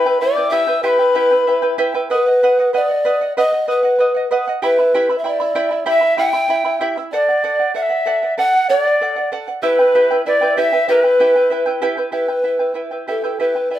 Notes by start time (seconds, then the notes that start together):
Already playing: B4 B5
0.06 E4 B4 G5
0.20 E4 B4 D5 E5 G5 D6
0.37 E4 B4 G5
0.50 E4 G4 B4 E5 G5 E6
0.67 E4 B4 G5
0.83 E4 G4 B4 E5 G5 C6
0.88 B5
0.99 E4 B4 G5
1.15 E4 G4 B4 E5 G5
1.31 E4 B4 G5
1.47 E4 B4 E5 G5
1.62 E4 B4 G5
1.78 E4 G4 B4 E5 G5
1.94 E4 B4 G5
2.10 B4 D#5 F#5
2.26 D#5 F#5
2.43 B4 D#5 F#5
2.59 D#5 F#5
2.73 B4 D5 D#5 F#5
2.89 D#5 F#5
3.05 B4 D#5 F#5
3.21 D#5 F#5
3.37 B4 D#5 F#5
3.52 D#5 F#5
3.68 B4 D#5 F#5
3.83 D#5 F#5
3.99 B4 D#5 F#5
4.14 D#5 F#5
4.31 B4 D#5 F#5
4.47 D#5 F#5
4.62 E4 G4 B4 E5 G5 B5
4.79 E4 E5 B5
4.94 E4 G4 E5 G5 B5
5.09 E4 E5 B5
5.18 E5
5.24 E4 D5 E5 G5 B5
5.40 E4 E5 B5
5.55 E4 G4 E5 G5 B5
5.71 E4 E5 B5
5.86 E4 G4 E5 G5 B5
6.01 E4 E5 B5
6.17 E4 G4 E5 F#5 G5 B5
6.32 E4 E5 G5 B5
6.48 E4 E5 G5 B5
6.65 E4 E5 B5
6.81 E4 G4 E5 G5 B5
6.97 E4 E5 B5
7.12 A4 D5 F#5
7.28 D5 F#5
7.44 A4 D5 F#5
7.59 D5 F#5
7.74 A4 D5 E5 F#5
7.82 E5
7.89 D5 F#5
8.06 A4 D5 F#5
8.23 D5 F#5
8.38 A4 D5 F#5
8.53 D5 F#5
8.69 A4 D5 F#5
8.85 D5 F#5
9.01 A4 D5 F#5
9.16 D5 F#5
9.32 A4 D5 F#5
9.48 D5 F#5
9.62 E4 G4 B4 C5 E5 G5
9.69 B4
9.79 E4 B4 G5
9.95 E4 G4 B4 E5 G5
10.11 E4 B4 G5
10.26 E4 B4 D5 E5 G5
10.41 E4 B4 G5
10.57 E4 G4 B4 E5 G5
10.73 E4 B4 G5
10.88 E4 G4 A#4 B4 E5 G5
11.02 E4 B4 G5
11.19 E4 G4 B4 E5 G5
11.36 E4 B4 G5
11.50 E4 B4 E5 G5
11.66 E4 B4 G5
11.82 E4 G4 B4 E5 G5
11.97 E4 B4 G5
12.12 E4 G4 B4 E5 G5
12.28 E4 B4 G5
12.44 E4 B4 E5 G5
12.59 E4 B4 G5
12.74 E4 B4 E5 G5
12.91 E4 B4 G5
13.08 E4 G4 A4 B4 E5 G5
13.24 E4 G4 B4 E5 G5
13.40 E4 G4 B4 E5 G5
13.55 E4 B4 G5
13.70 E4 B4 D5 E5 G5